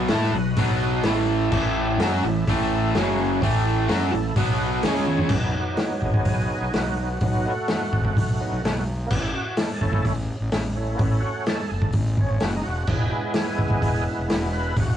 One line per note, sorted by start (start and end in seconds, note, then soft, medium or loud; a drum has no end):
0.00 1.03 F#4 medium
0.00 1.03 B4 medium
0.00 1.04 D#5 medium
0.08 0.32 A2 medium
0.08 0.34 A3 medium
0.08 0.34 E4 medium
0.08 snare loud
0.08 open hi-hat medium
0.13 0.35 A4 loud
0.32 0.55 B1 medium
0.32 0.53 B2 medium
0.32 0.53 F#3 medium
0.57 1.01 B1 medium
0.57 1.05 B2 loud
0.57 1.05 F#3 loud
0.57 1.05 B3 loud
0.57 kick loud
0.57 open hi-hat medium
1.03 1.49 A1 medium
1.03 1.51 A2 medium
1.03 1.52 E3 loud
1.03 1.52 A3 loud
1.03 2.93 E4 medium
1.03 2.93 A4 medium
1.03 2.93 E5 medium
1.03 snare loud
1.03 open hi-hat medium
1.52 1.97 A1 loud
1.52 1.99 A2 loud
1.52 2.00 E3 loud
1.52 1.99 A3 loud
1.52 kick loud
1.52 crash medium
1.97 2.21 F#2 medium
1.97 2.23 F#3 medium
1.97 2.23 C#4 loud
1.97 snare loud
1.97 open hi-hat medium
2.02 2.24 F#4 medium
2.23 2.45 A1 medium
2.23 2.43 A2 medium
2.23 2.43 E3 medium
2.47 2.92 A1 medium
2.47 2.95 A2 medium
2.47 2.95 E3 medium
2.47 2.95 A3 loud
2.47 kick loud
2.47 open hi-hat medium
2.94 3.38 F#1 medium
2.94 3.42 F#2 loud
2.94 3.42 C#3 medium
2.94 3.42 F#3 loud
2.94 3.42 C#4 medium
2.94 3.42 F#4 medium
2.94 3.43 C#5 medium
2.94 snare loud
2.94 open hi-hat soft
3.41 3.86 A1 loud
3.41 3.89 A2 medium
3.41 3.89 E3 loud
3.41 4.35 A3 medium
3.41 3.89 A3 loud
3.41 4.36 E4 medium
3.41 4.36 A4 medium
3.41 kick loud
3.41 open hi-hat medium
3.89 4.12 F#2 medium
3.89 4.12 F#3 medium
3.89 4.12 C#4 medium
3.89 4.13 F#4 medium
3.89 snare loud
3.89 open hi-hat medium
4.13 4.35 A1 medium
4.13 4.32 A2 medium
4.13 4.32 E3 medium
4.36 4.80 B1 medium
4.36 4.83 B2 medium
4.36 4.84 F#3 loud
4.36 4.83 B3 medium
4.36 4.84 B3 loud
4.36 4.83 F#4 medium
4.36 4.83 B4 medium
4.36 kick loud
4.36 open hi-hat medium
4.83 5.28 C#2 medium
4.83 5.31 C#3 medium
4.83 5.31 G#3 medium
4.83 5.31 C#4 medium
4.83 5.32 C#4 medium
4.83 5.32 G#4 medium
4.83 5.32 C#5 medium
4.83 snare loud
4.83 open hi-hat medium
5.07 high tom medium
5.18 floor tom medium
5.29 5.53 B1 loud
5.29 7.17 F#3 medium
5.29 kick loud
5.29 crash loud
5.33 7.18 B3 soft
5.33 6.98 D#4 medium
5.77 snare medium
5.77 open hi-hat medium
5.99 6.24 G#1 medium
5.99 6.02 G4 medium
5.99 kick medium
6.05 6.73 G#4 medium
6.14 kick medium
6.25 6.48 B1 medium
6.25 kick medium
6.25 open hi-hat medium
6.61 6.73 B1 medium
6.74 7.18 B1 medium
6.74 6.98 F#4 medium
6.74 snare loud
6.74 open hi-hat medium
6.99 7.09 D#4 medium
7.13 7.46 F#4 medium
7.21 7.43 B1 medium
7.21 7.53 F#3 medium
7.21 7.53 B3 soft
7.21 7.53 D#4 medium
7.21 kick loud
7.21 open hi-hat medium
7.46 8.84 A3 medium
7.46 8.84 F#4 medium
7.68 snare loud
7.68 open hi-hat medium
7.92 8.14 G#1 medium
7.92 kick medium
8.05 kick medium
8.17 8.38 B1 loud
8.17 kick loud
8.17 open hi-hat medium
8.40 8.61 F#3 medium
8.40 8.61 B3 soft
8.40 8.61 D#4 medium
8.52 8.63 B1 medium
8.64 9.07 B1 medium
8.64 snare loud
8.64 open hi-hat medium
9.06 9.09 A#3 medium
9.06 9.21 B3 medium
9.11 9.33 A1 medium
9.11 kick loud
9.11 crash loud
9.20 9.32 E4 medium
9.34 9.57 F#4 medium
9.57 9.80 A4 medium
9.57 snare loud
9.57 open hi-hat medium
9.77 9.80 G#4 medium
9.81 10.03 F#1 medium
9.81 10.13 A3 medium
9.81 10.13 C#4 soft
9.81 10.13 E4 medium
9.81 10.04 A4 medium
9.81 kick medium
9.93 kick medium
10.05 10.27 A1 loud
10.05 kick loud
10.05 open hi-hat medium
10.40 10.51 A1 medium
10.52 10.97 A1 medium
10.52 snare loud
10.52 open hi-hat medium
10.75 10.96 A3 soft
10.75 10.96 C#4 soft
10.75 10.97 E4 soft
10.95 11.66 A3 medium
10.95 10.98 A#3 medium
10.95 11.09 B3 medium
10.95 11.66 C#4 medium
10.95 11.10 E4 medium
10.95 open hi-hat medium
10.99 11.21 A1 medium
10.99 kick loud
11.11 11.22 E4 medium
11.20 11.45 F#4 medium
11.46 11.70 A4 medium
11.46 snare loud
11.46 open hi-hat medium
11.68 11.93 F#1 medium
11.68 11.71 G#4 medium
11.73 11.94 A4 medium
11.82 kick medium
11.93 12.16 A1 loud
11.93 kick loud
11.93 open hi-hat medium
12.17 12.39 G#1 medium
12.17 12.42 C#4 medium
12.17 kick medium
12.40 12.63 F#1 medium
12.40 12.54 F#4 medium
12.40 snare loud
12.40 open hi-hat medium
12.56 12.66 D#4 medium
12.63 12.87 E1 medium
12.63 12.87 F#4 medium
12.87 13.10 E1 medium
12.87 14.73 G#3 medium
12.87 14.74 B3 soft
12.87 14.74 E4 medium
12.87 13.11 G#4 medium
12.87 kick loud
12.87 crash medium
13.09 13.12 G4 medium
13.09 14.03 G#4 medium
13.34 snare loud
13.34 open hi-hat medium
13.58 13.81 C#2 medium
13.58 kick medium
13.70 kick medium
13.82 14.05 E1 medium
13.82 kick medium
13.82 open hi-hat medium
14.19 14.30 E1 medium
14.30 14.74 E1 medium
14.30 snare loud
14.30 open hi-hat medium
14.53 14.76 B4 medium
14.76 14.97 E1 loud
14.76 14.88 F#4 medium
14.76 kick loud
14.76 open hi-hat medium
14.90 14.97 F#4 medium